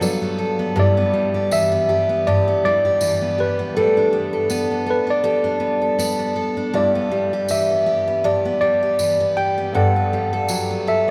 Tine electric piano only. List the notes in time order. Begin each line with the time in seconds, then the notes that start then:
0.80 D5
1.52 E5
2.27 D5
2.65 D5
3.40 B4
3.77 A4
4.91 B4
5.10 D5
6.75 D5
7.51 E5
8.25 D5
8.61 D5
9.37 G5
9.75 F#5
10.88 E5